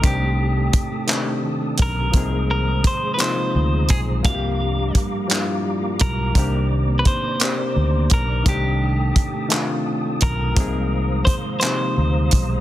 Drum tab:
HH |x-xx-x|x-xx-x|x-xx-x|x-xx-x|
CP |---x--|---x--|---x--|---x--|
BD |o-o--o|o-o--o|o-o--o|o-o--o|

HH |x-xx-x|x-xx-x|
CP |---x--|---x--|
BD |o-o--o|o-o--o|